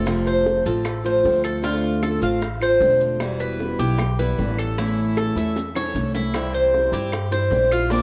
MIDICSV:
0, 0, Header, 1, 6, 480
1, 0, Start_track
1, 0, Tempo, 392157
1, 83, Time_signature, 4, 2, 24, 8
1, 9818, End_track
2, 0, Start_track
2, 0, Title_t, "Cuban tres"
2, 0, Program_c, 0, 25
2, 332, Note_on_c, 0, 72, 66
2, 794, Note_off_c, 0, 72, 0
2, 811, Note_on_c, 0, 69, 71
2, 1273, Note_off_c, 0, 69, 0
2, 1293, Note_on_c, 0, 72, 61
2, 1754, Note_off_c, 0, 72, 0
2, 1767, Note_on_c, 0, 69, 67
2, 1999, Note_off_c, 0, 69, 0
2, 2010, Note_on_c, 0, 65, 70
2, 2473, Note_off_c, 0, 65, 0
2, 2483, Note_on_c, 0, 69, 69
2, 2717, Note_off_c, 0, 69, 0
2, 2727, Note_on_c, 0, 77, 74
2, 3192, Note_off_c, 0, 77, 0
2, 3212, Note_on_c, 0, 72, 69
2, 3674, Note_off_c, 0, 72, 0
2, 4163, Note_on_c, 0, 71, 75
2, 4630, Note_off_c, 0, 71, 0
2, 4643, Note_on_c, 0, 67, 75
2, 5110, Note_off_c, 0, 67, 0
2, 5130, Note_on_c, 0, 71, 71
2, 5593, Note_off_c, 0, 71, 0
2, 5616, Note_on_c, 0, 69, 68
2, 5844, Note_off_c, 0, 69, 0
2, 5852, Note_on_c, 0, 64, 65
2, 6315, Note_off_c, 0, 64, 0
2, 6334, Note_on_c, 0, 69, 71
2, 6562, Note_off_c, 0, 69, 0
2, 6576, Note_on_c, 0, 76, 62
2, 7036, Note_off_c, 0, 76, 0
2, 7052, Note_on_c, 0, 73, 75
2, 7514, Note_off_c, 0, 73, 0
2, 7523, Note_on_c, 0, 64, 73
2, 7989, Note_off_c, 0, 64, 0
2, 8008, Note_on_c, 0, 72, 71
2, 8472, Note_off_c, 0, 72, 0
2, 8482, Note_on_c, 0, 67, 73
2, 8948, Note_off_c, 0, 67, 0
2, 8961, Note_on_c, 0, 72, 77
2, 9428, Note_off_c, 0, 72, 0
2, 9450, Note_on_c, 0, 65, 74
2, 9677, Note_off_c, 0, 65, 0
2, 9682, Note_on_c, 0, 62, 69
2, 9818, Note_off_c, 0, 62, 0
2, 9818, End_track
3, 0, Start_track
3, 0, Title_t, "Steel-string acoustic guitar"
3, 0, Program_c, 1, 25
3, 68, Note_on_c, 1, 48, 70
3, 78, Note_on_c, 1, 53, 67
3, 86, Note_on_c, 1, 57, 76
3, 95, Note_on_c, 1, 65, 71
3, 98, Note_on_c, 1, 60, 77
3, 787, Note_off_c, 1, 48, 0
3, 795, Note_off_c, 1, 65, 0
3, 800, Note_off_c, 1, 60, 0
3, 800, Note_on_c, 1, 65, 69
3, 805, Note_on_c, 1, 60, 64
3, 812, Note_off_c, 1, 57, 0
3, 817, Note_on_c, 1, 57, 56
3, 819, Note_off_c, 1, 53, 0
3, 824, Note_on_c, 1, 53, 58
3, 1024, Note_off_c, 1, 53, 0
3, 1032, Note_off_c, 1, 57, 0
3, 1033, Note_off_c, 1, 65, 0
3, 1035, Note_off_c, 1, 60, 0
3, 1275, Note_on_c, 1, 65, 63
3, 1285, Note_on_c, 1, 60, 50
3, 1291, Note_on_c, 1, 57, 54
3, 1297, Note_on_c, 1, 53, 47
3, 1495, Note_off_c, 1, 53, 0
3, 1508, Note_off_c, 1, 57, 0
3, 1509, Note_on_c, 1, 53, 51
3, 1510, Note_off_c, 1, 65, 0
3, 1515, Note_off_c, 1, 60, 0
3, 1523, Note_on_c, 1, 57, 41
3, 1535, Note_on_c, 1, 60, 46
3, 1538, Note_on_c, 1, 65, 52
3, 1980, Note_off_c, 1, 57, 0
3, 1982, Note_off_c, 1, 53, 0
3, 1984, Note_off_c, 1, 60, 0
3, 1987, Note_on_c, 1, 50, 72
3, 1993, Note_off_c, 1, 65, 0
3, 1995, Note_on_c, 1, 57, 71
3, 1999, Note_on_c, 1, 60, 66
3, 2007, Note_on_c, 1, 65, 80
3, 2695, Note_off_c, 1, 65, 0
3, 2707, Note_off_c, 1, 50, 0
3, 2708, Note_off_c, 1, 60, 0
3, 2710, Note_on_c, 1, 65, 67
3, 2711, Note_off_c, 1, 57, 0
3, 2723, Note_on_c, 1, 60, 57
3, 2729, Note_on_c, 1, 57, 54
3, 2939, Note_off_c, 1, 57, 0
3, 2941, Note_off_c, 1, 60, 0
3, 2948, Note_off_c, 1, 65, 0
3, 3188, Note_on_c, 1, 65, 55
3, 3201, Note_on_c, 1, 60, 58
3, 3215, Note_on_c, 1, 57, 49
3, 3426, Note_off_c, 1, 57, 0
3, 3427, Note_off_c, 1, 65, 0
3, 3428, Note_on_c, 1, 50, 52
3, 3434, Note_off_c, 1, 60, 0
3, 3441, Note_on_c, 1, 57, 43
3, 3449, Note_on_c, 1, 60, 48
3, 3457, Note_on_c, 1, 65, 54
3, 3907, Note_off_c, 1, 50, 0
3, 3914, Note_off_c, 1, 57, 0
3, 3915, Note_on_c, 1, 47, 66
3, 3918, Note_off_c, 1, 60, 0
3, 3921, Note_on_c, 1, 52, 72
3, 3922, Note_off_c, 1, 65, 0
3, 3932, Note_on_c, 1, 55, 79
3, 3937, Note_on_c, 1, 59, 74
3, 3943, Note_on_c, 1, 64, 78
3, 4631, Note_off_c, 1, 47, 0
3, 4633, Note_off_c, 1, 59, 0
3, 4633, Note_off_c, 1, 64, 0
3, 4638, Note_on_c, 1, 64, 68
3, 4639, Note_off_c, 1, 55, 0
3, 4648, Note_on_c, 1, 59, 68
3, 4659, Note_on_c, 1, 55, 63
3, 4663, Note_off_c, 1, 52, 0
3, 4668, Note_on_c, 1, 52, 62
3, 4872, Note_off_c, 1, 64, 0
3, 4877, Note_off_c, 1, 59, 0
3, 4883, Note_off_c, 1, 52, 0
3, 4883, Note_off_c, 1, 55, 0
3, 5127, Note_on_c, 1, 64, 60
3, 5133, Note_on_c, 1, 59, 64
3, 5143, Note_on_c, 1, 55, 57
3, 5151, Note_on_c, 1, 52, 52
3, 5344, Note_off_c, 1, 52, 0
3, 5357, Note_off_c, 1, 64, 0
3, 5358, Note_off_c, 1, 55, 0
3, 5359, Note_on_c, 1, 52, 48
3, 5360, Note_off_c, 1, 59, 0
3, 5373, Note_on_c, 1, 55, 47
3, 5378, Note_on_c, 1, 59, 51
3, 5384, Note_on_c, 1, 64, 51
3, 5833, Note_off_c, 1, 52, 0
3, 5839, Note_off_c, 1, 55, 0
3, 5842, Note_off_c, 1, 59, 0
3, 5845, Note_off_c, 1, 64, 0
3, 5847, Note_on_c, 1, 52, 67
3, 5859, Note_on_c, 1, 57, 81
3, 5864, Note_on_c, 1, 61, 84
3, 5872, Note_on_c, 1, 64, 85
3, 6556, Note_off_c, 1, 64, 0
3, 6561, Note_on_c, 1, 64, 72
3, 6562, Note_off_c, 1, 57, 0
3, 6565, Note_off_c, 1, 61, 0
3, 6581, Note_on_c, 1, 61, 64
3, 6590, Note_on_c, 1, 57, 54
3, 6793, Note_off_c, 1, 64, 0
3, 6801, Note_off_c, 1, 57, 0
3, 6804, Note_off_c, 1, 52, 0
3, 6804, Note_off_c, 1, 61, 0
3, 7035, Note_on_c, 1, 64, 64
3, 7054, Note_on_c, 1, 61, 52
3, 7063, Note_on_c, 1, 57, 51
3, 7268, Note_off_c, 1, 57, 0
3, 7270, Note_off_c, 1, 64, 0
3, 7279, Note_on_c, 1, 52, 42
3, 7280, Note_off_c, 1, 61, 0
3, 7283, Note_on_c, 1, 57, 50
3, 7298, Note_on_c, 1, 61, 48
3, 7302, Note_on_c, 1, 64, 49
3, 7749, Note_off_c, 1, 52, 0
3, 7752, Note_on_c, 1, 48, 68
3, 7754, Note_off_c, 1, 57, 0
3, 7762, Note_off_c, 1, 61, 0
3, 7763, Note_on_c, 1, 52, 75
3, 7764, Note_off_c, 1, 64, 0
3, 7769, Note_on_c, 1, 55, 68
3, 7773, Note_on_c, 1, 60, 74
3, 7779, Note_on_c, 1, 64, 71
3, 8460, Note_off_c, 1, 64, 0
3, 8468, Note_off_c, 1, 48, 0
3, 8474, Note_off_c, 1, 52, 0
3, 8474, Note_on_c, 1, 64, 72
3, 8477, Note_off_c, 1, 55, 0
3, 8482, Note_off_c, 1, 60, 0
3, 8487, Note_on_c, 1, 60, 61
3, 8500, Note_on_c, 1, 55, 61
3, 8505, Note_on_c, 1, 52, 57
3, 8702, Note_off_c, 1, 52, 0
3, 8704, Note_off_c, 1, 55, 0
3, 8709, Note_off_c, 1, 64, 0
3, 8711, Note_off_c, 1, 60, 0
3, 8950, Note_on_c, 1, 64, 63
3, 8966, Note_on_c, 1, 60, 57
3, 8968, Note_on_c, 1, 55, 46
3, 8975, Note_on_c, 1, 52, 45
3, 9177, Note_off_c, 1, 52, 0
3, 9184, Note_off_c, 1, 55, 0
3, 9187, Note_off_c, 1, 64, 0
3, 9192, Note_on_c, 1, 52, 45
3, 9195, Note_off_c, 1, 60, 0
3, 9199, Note_on_c, 1, 55, 49
3, 9212, Note_on_c, 1, 60, 49
3, 9217, Note_on_c, 1, 64, 53
3, 9668, Note_off_c, 1, 52, 0
3, 9671, Note_off_c, 1, 55, 0
3, 9674, Note_on_c, 1, 50, 70
3, 9678, Note_off_c, 1, 60, 0
3, 9680, Note_on_c, 1, 58, 72
3, 9681, Note_off_c, 1, 64, 0
3, 9693, Note_on_c, 1, 60, 79
3, 9697, Note_on_c, 1, 65, 74
3, 9818, Note_off_c, 1, 50, 0
3, 9818, Note_off_c, 1, 58, 0
3, 9818, Note_off_c, 1, 60, 0
3, 9818, Note_off_c, 1, 65, 0
3, 9818, End_track
4, 0, Start_track
4, 0, Title_t, "Upright bass"
4, 0, Program_c, 2, 32
4, 0, Note_on_c, 2, 29, 87
4, 730, Note_off_c, 2, 29, 0
4, 803, Note_on_c, 2, 33, 87
4, 1475, Note_off_c, 2, 33, 0
4, 1525, Note_on_c, 2, 38, 92
4, 2653, Note_off_c, 2, 38, 0
4, 2711, Note_on_c, 2, 33, 85
4, 3389, Note_off_c, 2, 33, 0
4, 3431, Note_on_c, 2, 28, 94
4, 4566, Note_off_c, 2, 28, 0
4, 4637, Note_on_c, 2, 35, 88
4, 5312, Note_off_c, 2, 35, 0
4, 5369, Note_on_c, 2, 33, 98
4, 6494, Note_off_c, 2, 33, 0
4, 6552, Note_on_c, 2, 40, 78
4, 7230, Note_off_c, 2, 40, 0
4, 7272, Note_on_c, 2, 36, 93
4, 8405, Note_off_c, 2, 36, 0
4, 8470, Note_on_c, 2, 43, 85
4, 9147, Note_off_c, 2, 43, 0
4, 9190, Note_on_c, 2, 34, 91
4, 9818, Note_off_c, 2, 34, 0
4, 9818, End_track
5, 0, Start_track
5, 0, Title_t, "Muted steel-string acoustic guitar strokes"
5, 1036, Note_on_c, 9, 29, 61
5, 1159, Note_off_c, 9, 29, 0
5, 2947, Note_on_c, 9, 29, 54
5, 3070, Note_off_c, 9, 29, 0
5, 4888, Note_on_c, 9, 29, 69
5, 5010, Note_off_c, 9, 29, 0
5, 6809, Note_on_c, 9, 29, 59
5, 6932, Note_off_c, 9, 29, 0
5, 8712, Note_on_c, 9, 29, 62
5, 8834, Note_off_c, 9, 29, 0
5, 9818, End_track
6, 0, Start_track
6, 0, Title_t, "Drums"
6, 76, Note_on_c, 9, 70, 81
6, 84, Note_on_c, 9, 75, 64
6, 85, Note_on_c, 9, 60, 63
6, 199, Note_off_c, 9, 70, 0
6, 206, Note_off_c, 9, 75, 0
6, 208, Note_off_c, 9, 60, 0
6, 323, Note_on_c, 9, 70, 24
6, 446, Note_off_c, 9, 70, 0
6, 567, Note_on_c, 9, 60, 57
6, 572, Note_on_c, 9, 70, 25
6, 690, Note_off_c, 9, 60, 0
6, 694, Note_off_c, 9, 70, 0
6, 802, Note_on_c, 9, 70, 63
6, 808, Note_on_c, 9, 60, 34
6, 925, Note_off_c, 9, 70, 0
6, 931, Note_off_c, 9, 60, 0
6, 1037, Note_on_c, 9, 70, 80
6, 1038, Note_on_c, 9, 75, 65
6, 1043, Note_on_c, 9, 60, 68
6, 1160, Note_off_c, 9, 70, 0
6, 1161, Note_off_c, 9, 75, 0
6, 1165, Note_off_c, 9, 60, 0
6, 1282, Note_on_c, 9, 70, 27
6, 1290, Note_on_c, 9, 60, 34
6, 1405, Note_off_c, 9, 70, 0
6, 1412, Note_off_c, 9, 60, 0
6, 1522, Note_on_c, 9, 70, 26
6, 1534, Note_on_c, 9, 60, 28
6, 1534, Note_on_c, 9, 61, 77
6, 1644, Note_off_c, 9, 70, 0
6, 1656, Note_off_c, 9, 60, 0
6, 1656, Note_off_c, 9, 61, 0
6, 1761, Note_on_c, 9, 75, 64
6, 1763, Note_on_c, 9, 70, 66
6, 1774, Note_on_c, 9, 60, 31
6, 1883, Note_off_c, 9, 75, 0
6, 1885, Note_off_c, 9, 70, 0
6, 1896, Note_off_c, 9, 60, 0
6, 2002, Note_on_c, 9, 70, 81
6, 2006, Note_on_c, 9, 60, 67
6, 2124, Note_off_c, 9, 70, 0
6, 2128, Note_off_c, 9, 60, 0
6, 2237, Note_on_c, 9, 70, 24
6, 2360, Note_off_c, 9, 70, 0
6, 2475, Note_on_c, 9, 70, 30
6, 2480, Note_on_c, 9, 60, 60
6, 2482, Note_on_c, 9, 75, 65
6, 2597, Note_off_c, 9, 70, 0
6, 2603, Note_off_c, 9, 60, 0
6, 2604, Note_off_c, 9, 75, 0
6, 2720, Note_on_c, 9, 70, 62
6, 2727, Note_on_c, 9, 60, 34
6, 2842, Note_off_c, 9, 70, 0
6, 2849, Note_off_c, 9, 60, 0
6, 2962, Note_on_c, 9, 70, 85
6, 2967, Note_on_c, 9, 60, 67
6, 3085, Note_off_c, 9, 70, 0
6, 3089, Note_off_c, 9, 60, 0
6, 3199, Note_on_c, 9, 70, 25
6, 3201, Note_on_c, 9, 75, 67
6, 3208, Note_on_c, 9, 60, 32
6, 3321, Note_off_c, 9, 70, 0
6, 3323, Note_off_c, 9, 75, 0
6, 3330, Note_off_c, 9, 60, 0
6, 3441, Note_on_c, 9, 70, 26
6, 3447, Note_on_c, 9, 60, 29
6, 3447, Note_on_c, 9, 61, 77
6, 3563, Note_off_c, 9, 70, 0
6, 3570, Note_off_c, 9, 60, 0
6, 3570, Note_off_c, 9, 61, 0
6, 3678, Note_on_c, 9, 70, 69
6, 3685, Note_on_c, 9, 60, 34
6, 3800, Note_off_c, 9, 70, 0
6, 3808, Note_off_c, 9, 60, 0
6, 3918, Note_on_c, 9, 70, 74
6, 3919, Note_on_c, 9, 60, 66
6, 3919, Note_on_c, 9, 75, 65
6, 4041, Note_off_c, 9, 60, 0
6, 4041, Note_off_c, 9, 70, 0
6, 4041, Note_off_c, 9, 75, 0
6, 4156, Note_on_c, 9, 70, 26
6, 4278, Note_off_c, 9, 70, 0
6, 4399, Note_on_c, 9, 70, 30
6, 4408, Note_on_c, 9, 60, 57
6, 4522, Note_off_c, 9, 70, 0
6, 4531, Note_off_c, 9, 60, 0
6, 4640, Note_on_c, 9, 70, 70
6, 4641, Note_on_c, 9, 60, 31
6, 4763, Note_off_c, 9, 60, 0
6, 4763, Note_off_c, 9, 70, 0
6, 4878, Note_on_c, 9, 60, 68
6, 4879, Note_on_c, 9, 70, 72
6, 4888, Note_on_c, 9, 75, 58
6, 5000, Note_off_c, 9, 60, 0
6, 5001, Note_off_c, 9, 70, 0
6, 5011, Note_off_c, 9, 75, 0
6, 5128, Note_on_c, 9, 60, 36
6, 5129, Note_on_c, 9, 70, 25
6, 5250, Note_off_c, 9, 60, 0
6, 5251, Note_off_c, 9, 70, 0
6, 5368, Note_on_c, 9, 70, 28
6, 5372, Note_on_c, 9, 60, 35
6, 5372, Note_on_c, 9, 61, 74
6, 5490, Note_off_c, 9, 70, 0
6, 5495, Note_off_c, 9, 60, 0
6, 5495, Note_off_c, 9, 61, 0
6, 5609, Note_on_c, 9, 60, 33
6, 5612, Note_on_c, 9, 75, 67
6, 5617, Note_on_c, 9, 70, 69
6, 5732, Note_off_c, 9, 60, 0
6, 5735, Note_off_c, 9, 75, 0
6, 5739, Note_off_c, 9, 70, 0
6, 5848, Note_on_c, 9, 70, 77
6, 5855, Note_on_c, 9, 60, 64
6, 5971, Note_off_c, 9, 70, 0
6, 5977, Note_off_c, 9, 60, 0
6, 6087, Note_on_c, 9, 70, 25
6, 6210, Note_off_c, 9, 70, 0
6, 6329, Note_on_c, 9, 60, 71
6, 6330, Note_on_c, 9, 75, 58
6, 6333, Note_on_c, 9, 70, 31
6, 6451, Note_off_c, 9, 60, 0
6, 6453, Note_off_c, 9, 75, 0
6, 6456, Note_off_c, 9, 70, 0
6, 6570, Note_on_c, 9, 70, 74
6, 6692, Note_off_c, 9, 70, 0
6, 6809, Note_on_c, 9, 60, 90
6, 6817, Note_on_c, 9, 70, 79
6, 6932, Note_off_c, 9, 60, 0
6, 6939, Note_off_c, 9, 70, 0
6, 7044, Note_on_c, 9, 75, 59
6, 7051, Note_on_c, 9, 61, 83
6, 7056, Note_on_c, 9, 70, 28
6, 7166, Note_off_c, 9, 75, 0
6, 7174, Note_off_c, 9, 61, 0
6, 7178, Note_off_c, 9, 70, 0
6, 7291, Note_on_c, 9, 61, 66
6, 7295, Note_on_c, 9, 70, 30
6, 7413, Note_off_c, 9, 61, 0
6, 7418, Note_off_c, 9, 70, 0
6, 7527, Note_on_c, 9, 70, 71
6, 7534, Note_on_c, 9, 61, 78
6, 7650, Note_off_c, 9, 70, 0
6, 7656, Note_off_c, 9, 61, 0
6, 7759, Note_on_c, 9, 75, 60
6, 7765, Note_on_c, 9, 60, 72
6, 7772, Note_on_c, 9, 70, 79
6, 7881, Note_off_c, 9, 75, 0
6, 7888, Note_off_c, 9, 60, 0
6, 7894, Note_off_c, 9, 70, 0
6, 8013, Note_on_c, 9, 70, 27
6, 8136, Note_off_c, 9, 70, 0
6, 8252, Note_on_c, 9, 60, 60
6, 8253, Note_on_c, 9, 70, 29
6, 8374, Note_off_c, 9, 60, 0
6, 8375, Note_off_c, 9, 70, 0
6, 8484, Note_on_c, 9, 60, 34
6, 8492, Note_on_c, 9, 70, 72
6, 8606, Note_off_c, 9, 60, 0
6, 8615, Note_off_c, 9, 70, 0
6, 8720, Note_on_c, 9, 75, 59
6, 8724, Note_on_c, 9, 70, 78
6, 8730, Note_on_c, 9, 60, 68
6, 8842, Note_off_c, 9, 75, 0
6, 8846, Note_off_c, 9, 70, 0
6, 8853, Note_off_c, 9, 60, 0
6, 8963, Note_on_c, 9, 70, 27
6, 8970, Note_on_c, 9, 60, 35
6, 9086, Note_off_c, 9, 70, 0
6, 9092, Note_off_c, 9, 60, 0
6, 9202, Note_on_c, 9, 70, 27
6, 9203, Note_on_c, 9, 60, 31
6, 9203, Note_on_c, 9, 61, 72
6, 9324, Note_off_c, 9, 70, 0
6, 9326, Note_off_c, 9, 60, 0
6, 9326, Note_off_c, 9, 61, 0
6, 9438, Note_on_c, 9, 70, 70
6, 9443, Note_on_c, 9, 75, 64
6, 9445, Note_on_c, 9, 60, 33
6, 9561, Note_off_c, 9, 70, 0
6, 9565, Note_off_c, 9, 75, 0
6, 9567, Note_off_c, 9, 60, 0
6, 9673, Note_on_c, 9, 60, 61
6, 9677, Note_on_c, 9, 70, 81
6, 9795, Note_off_c, 9, 60, 0
6, 9800, Note_off_c, 9, 70, 0
6, 9818, End_track
0, 0, End_of_file